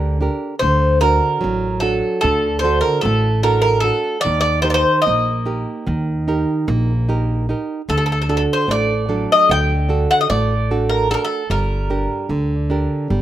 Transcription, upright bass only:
0.00 0.27 D2 loud
0.63 1.19 D2 medium
1.44 2.00 A1 medium
2.24 2.80 D2 loud
3.05 3.90 A1 loud
4.26 4.82 D#2 medium
5.08 5.63 A#1 medium
5.87 6.43 D#2 medium
6.68 7.52 A#1 loud
7.89 8.45 D2 medium
8.68 9.24 A1 medium
9.49 10.05 D2 medium
10.30 11.14 A1 medium
11.50 12.06 G1 medium
12.29 12.86 D2 medium
13.10 13.22 G1 medium

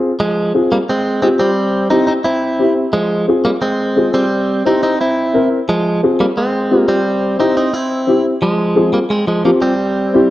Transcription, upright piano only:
0.54 0.78 C4 medium
0.54 0.78 F4 medium
0.54 0.78 G#4 medium
1.22 1.46 C4 medium
1.22 1.47 F4 medium
1.22 1.47 G4 medium
1.90 2.15 C4 medium
1.90 2.15 E4 medium
1.90 2.15 G4 medium
2.59 2.83 C4 medium
2.59 2.83 E4 medium
2.59 2.84 G4 medium
3.28 3.52 C4 medium
3.28 3.52 F4 medium
3.28 3.52 G#4 medium
3.96 4.20 C4 medium
3.96 4.21 F4 medium
3.96 4.21 G#4 medium
4.65 4.89 C4 medium
4.65 4.89 E4 medium
4.65 4.90 G4 medium
5.34 5.58 C4 medium
5.34 5.58 E4 medium
5.34 5.58 A#4 medium
6.03 6.27 C4 medium
6.03 6.27 F4 medium
6.03 6.27 G#4 medium
6.71 6.95 C4 medium
6.71 6.95 F4 medium
6.71 6.95 G4 medium
7.39 7.63 C4 medium
7.39 7.63 E4 medium
7.39 7.63 G4 medium
8.07 8.31 C4 medium
8.07 8.32 E4 medium
8.07 8.32 G4 medium
8.76 9.00 C4 medium
8.76 9.00 F4 medium
8.76 9.00 G#4 medium
9.44 9.69 C4 medium
9.44 9.69 F4 medium
9.44 9.69 G4 medium
10.14 10.30 C4 medium
10.14 10.30 E4 medium
10.14 10.30 G4 medium

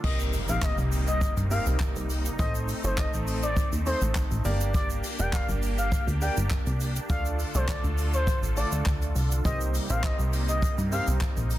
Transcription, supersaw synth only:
0.04 2.37 C3 medium
0.04 2.37 G3 medium
0.04 2.37 A#3 medium
0.04 4.41 D#4 medium
2.39 4.43 A3 medium
2.39 4.43 C4 medium
4.45 7.07 A#3 medium
4.45 9.41 D4 medium
4.45 7.07 G4 loud
7.10 9.43 D3 medium
7.10 9.43 F4 medium
7.10 9.43 A4 medium
9.45 11.59 C3 medium
9.45 11.59 G3 medium
9.45 11.59 A#3 medium
9.45 11.59 D#4 loud

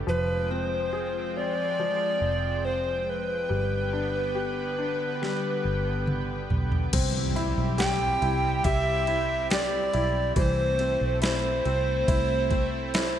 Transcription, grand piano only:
0.07 1.78 F3 soft
0.50 1.36 C4 soft
0.93 2.60 G#4 soft
1.37 3.04 C4 soft
1.79 3.47 F3 soft
3.49 5.20 G3 soft
3.93 4.77 D4 soft
4.35 6.03 G4 soft
4.78 6.46 D4 soft
5.22 6.89 G3 soft
6.93 10.32 C4 medium
7.36 8.20 E4 medium
7.78 8.64 G4 medium
8.22 9.06 E4 medium
8.65 9.49 G4 medium
9.08 9.92 E4 medium
9.51 10.34 G4 medium
9.93 10.35 E4 medium
10.37 13.19 E3 medium
10.80 11.64 C4 soft
11.22 12.07 E4 medium
11.65 12.49 C4 medium
12.08 12.93 E4 medium
12.51 13.19 C4 medium
12.94 13.19 E4 medium

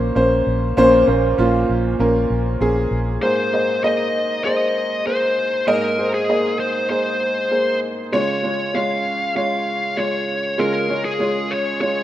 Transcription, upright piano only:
0.00 0.77 A#2 medium
0.00 0.15 A#3 loud
0.00 0.16 C#4 loud
0.00 0.16 C5 loud
0.15 0.62 A#3 medium
0.15 0.63 C#4 medium
0.15 0.63 C5 medium
0.77 1.65 A#2 medium
0.77 1.00 A#3 loud
0.77 1.01 C#4 loud
0.77 1.01 C5 loud
1.07 1.31 A#3 medium
1.07 1.31 C#4 medium
1.07 1.31 C5 medium
1.38 1.85 A#3 medium
1.38 1.85 C#4 medium
1.38 1.86 F4 medium
1.99 2.46 A#3 medium
1.99 2.47 C#4 medium
1.99 2.47 A#4 medium
2.60 3.08 A#3 medium
2.60 3.08 C#4 medium
2.60 3.08 G#4 medium
3.22 4.10 G#2 medium
3.22 3.46 A#3 medium
3.22 3.46 G#4 medium
3.22 3.46 C5 medium
3.53 3.76 A#3 soft
3.53 3.77 G#4 soft
3.53 3.77 D#5 medium
3.83 4.30 A#3 medium
3.83 4.31 G#4 medium
3.83 4.31 D#5 medium
4.45 4.92 A#3 medium
4.45 4.92 G#4 medium
4.45 4.92 C5 medium
5.06 5.53 A#3 soft
5.06 5.53 G#4 soft
5.06 5.54 C5 medium
5.67 6.56 G#2 medium
5.67 5.91 A#3 medium
5.67 5.91 G#4 medium
5.67 5.91 D#5 medium
5.98 6.22 A#3 soft
5.98 6.22 G#4 soft
5.98 6.22 C5 medium
6.29 6.76 A#3 medium
6.29 6.76 G#4 medium
6.29 6.76 D#5 medium
6.90 7.37 A#3 medium
6.90 7.37 G#4 medium
6.90 7.38 C5 medium
7.51 7.98 A#3 soft
7.51 7.99 G#4 soft
7.51 7.99 C5 medium
8.12 9.01 C#3 medium
8.12 8.36 G#3 medium
8.12 8.37 F4 medium
8.12 8.37 C#5 medium
8.43 8.67 G#3 medium
8.43 8.67 F4 soft
8.43 8.67 C#5 medium
8.74 9.21 G#3 medium
8.74 9.21 F4 medium
8.74 9.22 C#5 medium
9.35 9.83 G#3 medium
9.35 9.83 F4 medium
9.35 9.83 C#5 medium
9.97 10.44 G#3 medium
9.97 10.44 F4 soft
9.97 10.44 C#5 medium
10.58 11.46 C#3 medium
10.58 10.82 G#3 medium
10.58 10.82 F4 medium
10.58 10.82 G#4 medium
10.88 11.12 G#3 soft
10.88 11.12 F4 soft
10.88 11.13 C#5 medium
11.19 11.66 G#3 medium
11.19 11.67 F4 medium
11.19 11.67 C#5 medium
11.80 12.03 G#3 medium
11.80 12.03 F4 medium
11.80 12.03 C#5 medium

